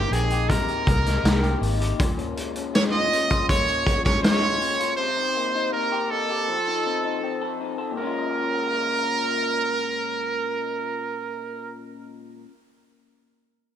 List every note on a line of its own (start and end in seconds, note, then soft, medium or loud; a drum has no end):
0.00 0.48 C3 medium
0.00 0.86 A#3 medium
0.00 0.11 D#4 medium
0.00 0.14 G4 medium
0.00 0.30 G4 medium
0.11 0.56 A#1 medium
0.11 0.68 D#4 medium
0.11 0.51 G#4 medium
0.11 closed hi-hat medium
0.30 1.41 G4 medium
0.30 closed hi-hat soft
0.49 1.98 C3 medium
0.49 1.62 A#4 medium
0.49 kick medium
0.49 closed hi-hat medium
0.68 1.05 D#4 medium
0.68 closed hi-hat soft
0.87 1.17 C2 loud
0.87 1.24 A#3 medium
0.87 kick medium
0.87 closed hi-hat medium
1.06 1.60 D#4 medium
1.06 snare soft
1.06 closed hi-hat soft
1.24 1.54 C2 loud
1.24 2.37 A#3 medium
1.24 snare loud
1.24 closed hi-hat medium
1.43 1.79 G4 medium
1.43 closed hi-hat soft
1.61 1.91 G#1 medium
1.61 2.07 D#4 medium
1.61 open hi-hat medium
1.80 2.07 G4 medium
1.80 closed hi-hat medium
1.99 3.49 A#2 medium
1.99 kick loud
1.99 closed hi-hat medium
2.18 2.55 C#4 medium
2.18 closed hi-hat soft
2.37 2.72 G#3 medium
2.37 closed hi-hat medium
2.56 3.10 C#4 medium
2.56 closed hi-hat medium
2.74 3.85 G#3 medium
2.74 2.83 C#5 loud
2.74 snare loud
2.74 closed hi-hat medium
2.92 3.29 F4 medium
2.92 3.45 D#5 loud
3.12 3.68 C#4 medium
3.12 closed hi-hat medium
3.30 4.42 F4 medium
3.30 kick medium
3.30 closed hi-hat medium
3.49 4.98 A#2 medium
3.49 4.01 C#5 loud
3.49 kick loud
3.49 closed hi-hat loud
3.67 4.04 C#4 medium
3.67 closed hi-hat soft
3.86 4.24 G#3 medium
3.86 kick medium
3.86 closed hi-hat medium
4.05 4.60 C#4 medium
4.05 4.22 C#5 medium
4.05 kick medium
4.05 snare soft
4.05 closed hi-hat medium
4.22 5.07 G#3 medium
4.22 4.94 C#5 loud
4.22 snare loud
4.22 closed hi-hat medium
4.43 4.79 F4 medium
4.61 5.07 C#4 medium
4.61 open hi-hat medium
4.80 5.06 F4 medium
4.80 closed hi-hat medium
4.97 6.56 C3 medium
4.97 5.69 C5 loud
5.16 5.54 D#4 medium
5.36 5.72 A#3 medium
5.55 6.10 D#4 medium
5.73 6.56 A#3 medium
5.73 6.12 A#4 medium
5.92 6.29 G4 medium
6.10 6.56 D#4 medium
6.10 7.61 A4 medium
6.30 6.56 G4 medium
6.48 7.97 F3 medium
6.67 7.03 D#4 medium
6.86 7.22 C4 medium
7.04 7.59 D#4 medium
7.23 8.01 C4 medium
7.41 7.77 A4 medium
7.60 8.06 D#4 medium
7.78 8.05 A4 medium
7.91 12.45 A#2 medium
7.97 12.48 G#3 medium
7.97 11.74 A#4 loud
8.02 12.50 C#4 medium
8.07 12.53 F4 medium